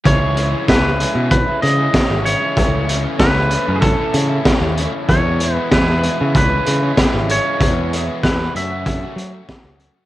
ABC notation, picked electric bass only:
X:1
M:4/4
L:1/16
Q:1/4=95
K:C#m
V:1 name="Picked electric bass" clef=bass
C,,4 C,,3 B,,2 z C,2 z G,,,2 z | C,,4 C,,3 F,,2 z C,2 z D,,2 z | E,,4 E,,3 C, C,,2 C,2 z G,,,2 z | E,,4 E,,2 F,,4 F,2 z C,,2 z |]